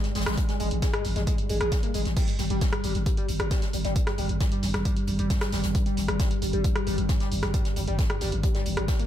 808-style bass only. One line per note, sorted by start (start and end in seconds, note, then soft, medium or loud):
0.15 0.26 G#1 medium
0.26 0.37 G#1 medium
0.60 0.71 G#1 medium
0.71 0.82 G#1 medium
1.05 1.15 G#1 medium
1.16 1.27 G#1 medium
1.49 1.60 G#1 loud
1.61 1.72 G#1 medium
1.94 2.05 G#1 loud
2.05 2.16 G#1 medium
2.39 2.50 G1 medium
2.50 2.61 G1 medium
2.84 2.94 G1 medium
2.95 3.06 G1 medium
3.29 3.39 G1 loud
3.40 3.51 G1 medium
3.73 3.84 G1 loud
3.85 3.95 G1 medium
4.18 4.29 G1 medium
4.29 4.40 G1 medium
4.63 4.74 G1 medium
4.74 4.85 G1 medium
5.08 5.18 G1 medium
5.19 5.30 G1 medium
5.52 5.63 G1 loud
5.64 5.75 G1 medium
5.97 6.08 G1 medium
6.08 6.19 G1 medium
6.42 6.53 G1 medium
6.53 6.64 G1 medium
6.87 6.97 G1 loud
6.98 7.09 G1 medium
7.32 7.42 G1 loud
7.43 7.54 G1 medium
7.76 7.87 G1 loud
7.88 7.98 G1 medium
8.21 8.32 G1 medium
8.32 8.43 G1 medium
8.66 8.76 G1 loud
8.77 8.88 G1 medium